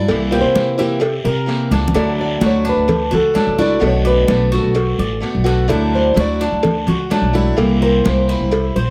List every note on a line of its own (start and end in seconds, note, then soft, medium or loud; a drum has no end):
0.00 0.30 E4 loud
0.00 0.36 D5 loud
0.08 0.41 C2 medium
0.08 0.31 C3 medium
0.08 0.31 E3 medium
0.08 0.30 A#3 medium
0.08 0.30 C4 medium
0.08 0.30 E4 medium
0.08 cowbell loud
0.08 high conga soft
0.08 long guiro medium
0.31 0.78 E3 medium
0.31 0.77 A#3 medium
0.31 0.77 C4 medium
0.31 0.77 E4 medium
0.31 0.77 G4 medium
0.31 high conga soft
0.41 1.21 C3 medium
0.41 0.76 C5 medium
0.55 cowbell medium
0.55 high conga loud
0.55 short guiro medium
0.78 1.00 E3 medium
0.78 1.00 A#3 medium
0.78 1.00 C4 medium
0.78 1.00 E4 medium
0.78 1.68 G4 medium
0.78 1.24 E5 medium
0.78 high conga soft
0.78 short guiro medium
1.00 muted steel-string acoustic guitar stroke medium
1.00 cowbell loud
1.00 high conga soft
1.00 long guiro medium
1.24 1.69 C3 loud
1.24 1.70 A#4 medium
1.24 high conga soft
1.46 1.93 E3 medium
1.46 1.93 A#3 medium
1.46 1.94 C4 medium
1.46 1.94 E4 medium
1.46 cowbell medium
1.46 high conga soft
1.46 short guiro medium
1.71 1.93 C#2 loud
1.71 1.93 D4 medium
1.71 cowbell medium
1.71 high conga medium
1.71 short guiro medium
1.88 low conga medium
1.94 2.39 D2 medium
1.94 2.41 D3 medium
1.94 2.39 F#3 medium
1.94 2.41 A3 medium
1.94 2.40 D4 medium
1.94 2.41 D4 medium
1.94 2.41 E4 medium
1.94 cowbell loud
1.94 long guiro medium
2.19 2.42 D5 medium
2.19 high conga soft
2.40 2.75 D2 loud
2.40 2.87 F#3 soft
2.40 2.87 A3 medium
2.40 2.87 D4 medium
2.40 2.87 E4 medium
2.40 2.64 F#4 medium
2.40 cowbell medium
2.40 high conga loud
2.40 short guiro medium
2.46 2.67 C#5 medium
2.65 3.10 D4 medium
2.65 high conga soft
2.65 short guiro medium
2.69 3.11 B4 medium
2.76 3.10 D2 medium
2.88 muted steel-string acoustic guitar stroke medium
2.88 cowbell loud
2.88 high conga soft
2.88 low conga medium
2.88 long guiro medium
3.11 3.34 C#2 medium
3.11 3.34 F#4 medium
3.11 3.79 A4 medium
3.11 cowbell medium
3.11 high conga soft
3.11 low conga medium
3.34 3.57 F#3 soft
3.34 3.57 A3 medium
3.34 3.58 D4 medium
3.34 3.57 E4 medium
3.34 cowbell medium
3.34 high conga medium
3.34 short guiro medium
3.47 3.80 C#2 medium
3.58 3.80 F#3 medium
3.58 3.80 A3 medium
3.58 3.81 D4 medium
3.58 3.81 E4 medium
3.58 4.04 F#4 medium
3.58 3.83 D5 loud
3.58 high conga medium
3.58 short guiro medium
3.80 4.26 B1 loud
3.80 4.27 B2 medium
3.80 4.26 D3 medium
3.80 4.27 A3 medium
3.80 4.27 B3 medium
3.80 4.28 F#4 medium
3.80 cowbell loud
3.80 high conga soft
3.80 long guiro medium
3.87 4.06 C#5 medium
4.05 4.50 B4 medium
4.05 4.51 D5 medium
4.05 high conga soft
4.27 4.62 B1 medium
4.27 4.73 D3 medium
4.27 4.74 A3 medium
4.27 4.74 B3 medium
4.27 4.74 F#4 medium
4.27 cowbell medium
4.27 high conga loud
4.27 short guiro medium
4.52 4.98 F#4 medium
4.52 5.20 A4 medium
4.52 high conga soft
4.52 short guiro medium
4.63 4.97 B1 medium
4.74 muted steel-string acoustic guitar stroke medium
4.74 cowbell loud
4.74 high conga soft
4.74 long guiro medium
4.98 5.21 A1 medium
4.98 5.45 D5 medium
4.98 high conga soft
5.20 5.44 D3 soft
5.20 5.44 A3 medium
5.20 5.43 B3 medium
5.20 5.43 F#4 medium
5.20 cowbell medium
5.20 high conga soft
5.20 short guiro medium
5.34 5.68 B1 medium
5.44 5.67 D3 medium
5.44 5.67 A3 medium
5.44 5.68 B3 medium
5.44 5.68 F#4 medium
5.44 5.69 F#4 medium
5.44 cowbell medium
5.44 high conga soft
5.44 short guiro medium
5.68 6.14 D2 loud
5.68 6.15 D3 medium
5.68 6.13 F#3 medium
5.68 6.14 A3 medium
5.68 6.15 D4 medium
5.68 6.16 E4 medium
5.68 cowbell loud
5.68 high conga soft
5.68 long guiro medium
5.94 6.17 C5 medium
5.94 high conga soft
6.14 6.50 D2 loud
6.14 6.61 F#3 medium
6.14 6.62 A3 medium
6.14 6.62 D4 medium
6.14 6.62 E4 medium
6.14 6.40 F#4 medium
6.14 cowbell medium
6.14 high conga loud
6.14 short guiro medium
6.20 6.85 D5 medium
6.39 6.86 D4 medium
6.39 high conga soft
6.39 short guiro medium
6.52 6.85 D2 medium
6.63 muted steel-string acoustic guitar stroke medium
6.63 cowbell loud
6.63 high conga soft
6.63 low conga medium
6.63 long guiro medium
6.87 7.09 C#2 medium
6.87 7.10 F#4 medium
6.87 cowbell medium
6.87 high conga soft
6.87 low conga medium
7.10 7.33 F#3 medium
7.10 7.33 A3 soft
7.10 7.34 D4 medium
7.10 7.33 D4 medium
7.10 7.32 E4 medium
7.10 cowbell medium
7.10 high conga medium
7.10 short guiro medium
7.22 7.56 B1 medium
7.33 7.57 F#3 medium
7.33 7.57 A3 medium
7.33 7.57 D4 medium
7.33 7.57 E4 medium
7.33 7.80 E4 medium
7.33 high conga medium
7.33 short guiro medium
7.57 8.02 C2 loud
7.57 8.03 C3 medium
7.57 8.03 E3 medium
7.57 8.04 A#3 medium
7.57 8.04 C4 medium
7.57 8.04 E4 medium
7.57 cowbell loud
7.57 high conga soft
7.57 long guiro medium
7.82 8.05 A#4 medium
7.82 8.27 C5 medium
8.04 8.39 C2 medium
8.04 8.50 E3 medium
8.04 8.51 A#3 medium
8.04 8.51 C4 medium
8.04 8.51 E4 medium
8.04 cowbell medium
8.04 high conga loud
8.04 short guiro medium
8.09 8.74 C5 medium
8.28 8.75 E4 medium
8.28 high conga soft
8.28 short guiro medium
8.40 8.74 C2 medium
8.51 muted steel-string acoustic guitar stroke medium
8.51 cowbell loud
8.51 high conga soft
8.51 long guiro medium
8.76 8.90 A#1 medium
8.76 8.90 C5 medium
8.76 high conga soft